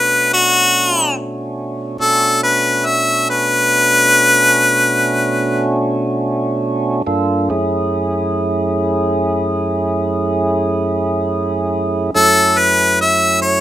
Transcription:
Already playing: B2 A3 C#4 D4 F#4 B4
0.34 F#4
2.00 B2 A3 C#4 D4 F#4 A4
2.44 B4
2.86 E5
3.30 B4
7.07 G2 A#3 D4 F4 A4
7.50 F#2 A3 C#4 E4 G#4
12.15 F#2 F#3 A3 C#4 E4 A4
12.59 B4
13.01 E5
13.42 C#5

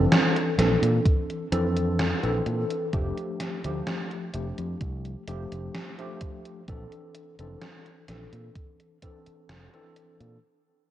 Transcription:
Already playing: E3 C4 D4 A4
0.12 snare, closed hi-hat
0.36 closed hi-hat
0.58 A#1 E3 C4 D4 A4, snare, closed hi-hat
0.82 A#2, closed hi-hat
1.06 kick, closed hi-hat
1.30 closed hi-hat
1.52 F2 E3 C4 D4 A4, closed hi-hat
1.77 closed hi-hat
2.00 snare, closed hi-hat
2.23 A#1 E3 C4 D4 A4, closed hi-hat
2.46 A#2, closed hi-hat
2.70 closed hi-hat
2.93 F1 F3 A3 D4 G4, kick, closed hi-hat
3.17 closed hi-hat
3.40 snare, closed hi-hat
3.64 D2 F3 A3 D4 G4, closed hi-hat
3.87 snare, closed hi-hat
4.11 closed hi-hat
4.33 F1 F3 A3 D4 G4, closed hi-hat
4.58 F2, closed hi-hat
4.81 C2, kick, closed hi-hat
5.05 closed hi-hat
5.27 F1 F3 A3 D4 G4, closed hi-hat
5.52 F1, closed hi-hat
5.75 snare, closed hi-hat
5.98 F3 A3 D4 G4, closed hi-hat
6.21 kick, closed hi-hat
6.45 closed hi-hat
6.68 A#1 E3 C4 D4 A4, kick, closed hi-hat
6.92 closed hi-hat
7.15 closed hi-hat
7.39 F1 E3 C4 D4 A4, closed hi-hat
7.61 snare, closed hi-hat
7.86 closed hi-hat
8.08 A#1 E3 C4 D4 A4, snare, closed hi-hat
8.33 A#2, closed hi-hat
8.56 kick, closed hi-hat
8.80 closed hi-hat
9.02 E3 C4 D4 A4, kick, closed hi-hat
9.26 muted fingered electric bass stroke, closed hi-hat
9.49 F1, snare, closed hi-hat
9.73 E3 C4 D4 A4, closed hi-hat
9.96 closed hi-hat
10.20 A#2, closed hi-hat

